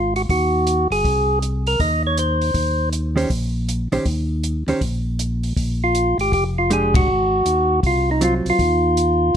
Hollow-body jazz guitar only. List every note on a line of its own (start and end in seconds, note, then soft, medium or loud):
3.16 3.28 D#3 medium
3.16 3.29 C#4 medium
3.16 3.29 G4 medium
3.16 3.29 C5 medium
3.92 4.04 D#3 medium
3.92 4.05 C#4 medium
3.92 4.05 G4 medium
3.92 4.05 C5 medium
4.68 4.80 D#3 medium
4.68 4.80 C#4 medium
4.68 4.80 G4 medium
4.68 4.81 C5 medium
6.70 7.08 G#3 medium
6.70 7.08 D4 medium
6.70 7.08 G4 medium
8.21 8.59 F#3 medium
8.21 8.59 C4 medium
8.21 8.60 F4 medium